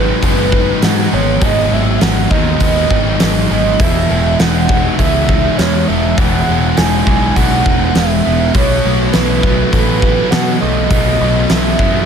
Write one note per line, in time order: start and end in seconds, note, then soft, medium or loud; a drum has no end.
0.00 0.11 G#1 medium
0.00 0.53 G#2 medium
0.00 1.41 G#2 medium
0.00 1.41 D#3 medium
0.00 0.82 F#3 medium
0.00 1.44 G#3 medium
0.00 1.12 B3 medium
0.00 0.52 D#4 medium
0.00 0.53 D#4 medium
0.00 0.23 B4 medium
0.23 0.71 F#1 medium
0.23 1.12 B3 medium
0.23 2.61 B4 medium
0.23 0.86 B4 loud
0.23 kick medium
0.23 open hi-hat soft
0.52 2.01 D#4 medium
0.52 2.31 D#4 medium
0.52 kick medium
0.82 1.07 G#2 medium
0.82 1.71 F#3 medium
0.82 2.00 F#3 medium
0.82 1.15 F#5 medium
0.82 snare loud
0.82 open hi-hat medium
1.12 1.37 G#1 medium
1.12 2.61 B3 medium
1.12 1.72 B3 medium
1.12 1.43 C#5 medium
1.41 1.66 G#1 medium
1.41 2.91 G#2 medium
1.41 2.30 G#2 medium
1.41 2.30 D#3 medium
1.41 2.31 G#3 medium
1.41 1.75 D#5 loud
1.41 kick loud
1.41 open hi-hat medium
1.72 1.96 G#1 medium
1.72 2.30 F#3 medium
1.72 3.50 B3 medium
1.72 2.03 E5 medium
2.01 2.25 G#1 medium
2.01 3.19 F#3 medium
2.01 2.90 D#4 medium
2.01 2.32 F#5 loud
2.01 snare loud
2.01 open hi-hat medium
2.31 2.55 D#2 medium
2.31 3.80 G#2 medium
2.31 3.79 D#3 medium
2.31 3.20 F#3 medium
2.31 3.82 G#3 medium
2.31 2.91 D#4 medium
2.31 2.61 D#5 medium
2.31 kick medium
2.60 2.85 D#2 medium
2.60 3.49 B3 medium
2.60 5.00 B4 medium
2.60 3.17 D#5 medium
2.60 kick medium
2.60 open hi-hat medium
2.91 3.15 G#1 medium
2.91 3.83 D#4 medium
2.91 kick medium
3.20 3.45 G#1 medium
3.20 3.80 F#3 medium
3.20 snare loud
3.20 open hi-hat medium
3.50 3.75 G#1 medium
3.50 4.99 B3 medium
3.50 4.09 B3 medium
3.50 3.82 D#5 medium
3.80 4.04 E1 medium
3.80 4.71 E2 medium
3.80 4.68 B2 medium
3.80 5.32 E3 medium
3.80 5.33 E3 medium
3.80 4.69 E3 loud
3.80 4.41 E5 loud
3.80 kick loud
3.80 open hi-hat medium
4.10 4.34 E1 medium
4.10 4.68 G#3 medium
4.10 5.89 B3 medium
4.39 4.88 E1 medium
4.39 5.58 G#3 medium
4.39 5.28 D#4 medium
4.39 4.98 F#5 loud
4.39 snare loud
4.39 open hi-hat medium
4.69 6.17 E2 medium
4.69 6.17 B2 medium
4.69 6.20 E3 medium
4.69 5.57 G#3 medium
4.69 5.28 D#4 medium
4.69 kick medium
4.98 5.47 C#2 medium
4.98 5.87 B3 medium
4.98 6.48 G#4 medium
4.98 5.59 E5 loud
4.98 kick medium
4.98 open hi-hat soft
5.29 6.76 D#4 medium
5.29 6.78 D#4 medium
5.29 kick medium
5.58 5.83 E2 medium
5.58 6.46 G#3 medium
5.58 6.77 G#3 medium
5.58 5.89 C#5 loud
5.58 snare loud
5.58 open hi-hat medium
5.87 6.13 E1 medium
5.87 7.36 B3 medium
5.87 6.49 B3 medium
5.87 6.19 E5 medium
6.17 6.42 E1 medium
6.17 7.05 E2 medium
6.17 7.06 B2 medium
6.17 7.69 E3 medium
6.17 7.70 E3 medium
6.17 7.07 E3 medium
6.17 6.79 F#5 loud
6.17 kick loud
6.17 open hi-hat medium
6.47 6.72 E1 medium
6.47 7.06 G#3 medium
6.47 8.25 B3 medium
6.77 7.02 E1 medium
6.77 7.95 G#3 medium
6.77 7.64 D#4 medium
6.77 7.37 G#5 loud
6.77 snare loud
6.77 open hi-hat medium
7.07 7.31 B1 medium
7.07 8.54 E2 medium
7.07 8.54 B2 medium
7.07 8.56 E3 medium
7.07 7.95 G#3 medium
7.07 7.66 D#4 medium
7.07 kick medium
7.36 7.61 B1 medium
7.36 8.25 B3 medium
7.36 8.56 G#4 medium
7.36 7.96 F#5 loud
7.36 kick medium
7.36 open hi-hat medium
7.66 7.90 E1 medium
7.66 8.55 D#4 medium
7.66 8.56 D#4 medium
7.66 kick medium
7.95 8.20 E1 medium
7.95 8.55 G#3 medium
7.95 8.56 G#3 medium
7.95 8.53 E5 loud
7.95 snare loud
7.95 open hi-hat medium
8.26 8.50 E1 medium
8.26 8.85 B3 medium
8.26 9.73 B3 medium
8.54 8.79 B1 medium
8.54 9.46 B2 medium
8.54 10.03 B2 medium
8.54 9.45 F#3 medium
8.54 9.43 B3 medium
8.54 9.14 C#5 loud
8.54 kick loud
8.54 open hi-hat medium
8.85 9.09 B1 medium
8.85 9.43 F#3 medium
8.85 10.61 A3 medium
9.13 9.62 B1 medium
9.13 10.31 F#3 medium
9.13 10.03 E4 medium
9.13 9.71 B4 medium
9.13 snare loud
9.13 open hi-hat medium
9.43 10.90 B2 medium
9.43 10.31 F#3 medium
9.43 10.90 F#3 medium
9.43 10.92 B3 medium
9.43 10.02 E4 medium
9.43 kick medium
9.71 10.21 A1 medium
9.71 10.60 A3 medium
9.71 11.21 A4 medium
9.71 10.32 B4 loud
9.71 kick medium
9.71 open hi-hat soft
10.02 11.50 E4 medium
10.02 11.49 E4 medium
10.02 kick medium
10.31 10.56 B2 medium
10.31 11.49 F#3 medium
10.31 11.20 F#3 medium
10.31 10.62 F#5 loud
10.31 snare loud
10.31 open hi-hat medium
10.61 10.86 B1 medium
10.61 11.20 A3 medium
10.61 12.05 A3 medium
10.61 11.52 D#5 medium
10.91 11.15 B1 medium
10.91 11.78 B2 medium
10.91 12.05 B2 medium
10.91 11.78 F#3 medium
10.91 11.78 B3 medium
10.91 kick loud
10.91 open hi-hat medium
11.21 11.45 B1 medium
11.21 11.79 F#3 medium
11.21 12.05 A3 medium
11.49 11.74 B1 medium
11.49 12.05 F#3 medium
11.49 12.05 E4 medium
11.49 12.05 E5 medium
11.49 snare loud
11.49 open hi-hat medium
11.79 12.03 F#2 medium
11.79 12.05 B2 medium
11.79 12.05 F#3 medium
11.79 12.05 B3 medium
11.79 12.05 E4 medium
11.79 kick medium